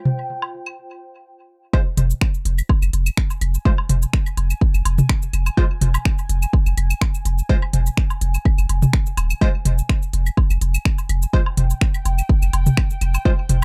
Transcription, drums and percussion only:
0.05 mid tom medium
0.42 high woodblock medium
0.66 claves soft
1.73 kick loud
1.73 claves medium
1.97 closed hi-hat medium
1.97 mid tom medium
2.10 shaker medium
2.21 finger snap medium
2.21 kick loud
2.21 high woodblock soft
2.34 shaker soft
2.45 closed hi-hat medium
2.58 claves medium
2.58 shaker medium
2.69 kick loud
2.69 high woodblock medium
2.82 claves medium
2.82 shaker soft
2.93 closed hi-hat medium
3.06 claves medium
3.06 shaker medium
3.17 finger snap loud
3.17 kick loud
3.30 high woodblock soft
3.30 shaker soft
3.41 closed hi-hat medium
3.41 claves medium
3.54 shaker medium
3.65 kick loud
3.78 high woodblock medium
3.89 closed hi-hat loud
3.89 mid tom medium
4.02 shaker medium
4.13 finger snap medium
4.13 kick loud
4.26 claves medium
4.26 shaker soft
4.37 closed hi-hat medium
4.37 high woodblock soft
4.50 claves medium
4.50 shaker soft
4.61 kick loud
4.74 claves medium
4.74 shaker soft
4.85 closed hi-hat loud
4.85 high woodblock medium
4.98 mid tom loud
4.98 shaker medium
5.09 finger snap loud
5.09 kick loud
5.09 claves medium
5.22 shaker soft
5.33 closed hi-hat medium
5.33 claves medium
5.46 claves medium
5.46 high woodblock soft
5.46 shaker medium
5.57 kick loud
5.81 closed hi-hat loud
5.81 mid tom medium
5.94 claves medium
5.94 high woodblock medium
5.94 shaker medium
6.05 finger snap medium
6.05 kick loud
6.18 shaker soft
6.29 closed hi-hat loud
6.42 claves medium
6.42 shaker soft
6.53 kick loud
6.53 high woodblock soft
6.66 claves medium
6.66 shaker soft
6.77 closed hi-hat loud
6.77 claves medium
6.90 claves medium
6.90 shaker soft
7.01 finger snap medium
7.01 kick loud
7.01 high woodblock medium
7.14 shaker soft
7.25 closed hi-hat medium
7.38 shaker soft
7.49 kick loud
7.62 claves medium
7.62 high woodblock soft
7.73 closed hi-hat loud
7.73 mid tom medium
7.86 shaker medium
7.97 finger snap medium
7.97 kick loud
8.10 high woodblock medium
8.10 shaker soft
8.21 closed hi-hat loud
8.34 claves medium
8.34 shaker medium
8.45 kick loud
8.45 claves medium
8.58 claves medium
8.58 shaker soft
8.69 closed hi-hat loud
8.69 high woodblock soft
8.82 mid tom medium
8.82 shaker soft
8.93 finger snap medium
8.93 kick loud
9.06 shaker soft
9.17 closed hi-hat medium
9.17 claves medium
9.17 high woodblock medium
9.30 claves medium
9.30 shaker soft
9.41 kick loud
9.41 claves medium
9.65 closed hi-hat loud
9.65 mid tom medium
9.78 shaker medium
9.89 finger snap medium
9.89 kick loud
9.89 high woodblock soft
10.02 shaker soft
10.13 closed hi-hat medium
10.26 claves medium
10.26 shaker soft
10.37 kick loud
10.37 high woodblock medium
10.50 claves medium
10.50 shaker soft
10.61 closed hi-hat medium
10.74 claves medium
10.74 shaker soft
10.85 finger snap medium
10.85 kick loud
10.98 high woodblock soft
10.98 shaker soft
11.09 closed hi-hat medium
11.09 claves medium
11.22 shaker soft
11.33 kick loud
11.46 high woodblock medium
11.57 closed hi-hat medium
11.57 mid tom medium
11.70 shaker medium
11.81 finger snap medium
11.81 kick loud
11.94 claves medium
11.94 shaker soft
12.05 closed hi-hat medium
12.05 high woodblock soft
12.18 claves soft
12.18 shaker medium
12.29 kick loud
12.42 claves medium
12.42 shaker soft
12.53 closed hi-hat medium
12.53 high woodblock medium
12.66 mid tom medium
12.66 shaker soft
12.77 finger snap medium
12.77 kick loud
12.77 claves medium
12.90 shaker soft
13.01 closed hi-hat medium
13.01 claves medium
13.14 claves medium
13.14 high woodblock soft
13.14 shaker medium
13.25 kick loud
13.49 closed hi-hat medium
13.49 mid tom medium

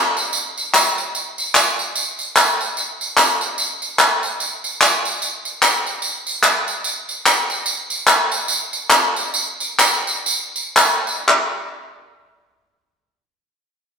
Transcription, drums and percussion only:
0.17 tambourine medium
0.33 tambourine medium
0.58 tambourine medium
0.74 clap medium
0.74 tambourine loud
0.98 tambourine soft
1.15 tambourine medium
1.38 tambourine medium
1.55 clap medium
1.55 tambourine medium
1.79 tambourine soft
1.95 tambourine medium
2.19 tambourine soft
2.36 clap medium
2.36 tambourine medium
2.61 tambourine soft
2.77 tambourine medium
3.01 tambourine medium
3.17 clap medium
3.17 tambourine medium
3.41 tambourine medium
3.58 tambourine medium
3.82 tambourine soft
3.99 clap medium
3.99 tambourine medium
4.23 tambourine soft
4.40 tambourine medium
4.64 tambourine medium
4.81 clap medium
4.81 tambourine medium
5.05 tambourine medium
5.22 tambourine medium
5.45 tambourine soft
5.62 clap medium
5.62 tambourine medium
5.87 tambourine soft
6.02 tambourine medium
6.27 tambourine soft
6.43 clap medium
6.43 tambourine medium
6.68 tambourine medium
6.84 tambourine medium
7.09 tambourine soft
7.26 clap medium
7.26 tambourine medium
7.50 tambourine soft
7.66 tambourine medium
7.90 tambourine medium
8.07 clap medium
8.07 tambourine loud
8.32 tambourine medium
8.48 tambourine medium
8.73 tambourine medium
8.90 clap loud
8.90 tambourine loud
9.16 tambourine medium
9.34 tambourine medium
9.60 tambourine medium
9.79 clap medium
9.79 tambourine medium
10.07 tambourine medium
10.26 tambourine medium
10.56 tambourine medium
10.77 clap loud
10.77 tambourine loud
11.07 tambourine soft
11.28 clap medium

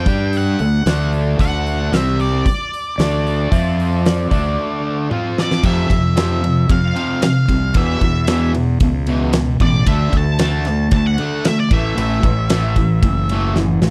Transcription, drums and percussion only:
0.06 kick medium
0.06 open hi-hat soft
0.33 open hi-hat medium
0.59 open hi-hat soft
0.86 snare loud
0.86 open hi-hat medium
1.13 open hi-hat soft
1.39 kick medium
1.39 open hi-hat medium
1.67 open hi-hat soft
1.93 snare medium
1.93 open hi-hat medium
2.20 open hi-hat soft
2.46 kick medium
2.46 open hi-hat medium
2.74 open hi-hat soft
2.99 snare medium
2.99 open hi-hat medium
3.27 open hi-hat soft
3.52 kick medium
3.52 open hi-hat medium
3.80 open hi-hat soft
4.06 snare loud
4.06 open hi-hat medium
4.31 kick medium
4.31 open hi-hat soft
5.11 high tom soft
5.38 snare medium
5.51 snare medium
5.63 kick medium
5.63 crash medium
5.90 kick medium
5.90 ride medium
6.17 snare loud
6.17 ride medium
6.44 ride medium
6.69 kick loud
6.69 ride medium
6.96 ride medium
7.22 snare loud
7.22 ride medium
7.49 kick medium
7.49 ride medium
7.74 kick loud
7.74 ride medium
8.01 kick medium
8.01 ride medium
8.27 snare loud
8.27 ride loud
8.54 ride medium
8.80 kick loud
8.80 ride medium
9.07 ride medium
9.33 snare loud
9.33 ride medium
9.60 kick medium
9.60 ride medium
9.87 kick medium
9.87 ride medium
10.13 kick medium
10.13 ride medium
10.39 snare loud
10.39 ride medium
10.65 snare soft
10.65 ride medium
10.91 kick loud
10.91 ride medium
11.18 ride medium
11.45 snare loud
11.45 ride loud
11.71 kick loud
11.71 ride medium
11.98 ride medium
12.23 kick medium
12.23 ride medium
12.50 snare loud
12.50 ride medium
12.76 kick medium
12.76 ride medium
13.03 kick loud
13.03 ride medium
13.29 ride medium
13.56 snare medium
13.82 snare medium

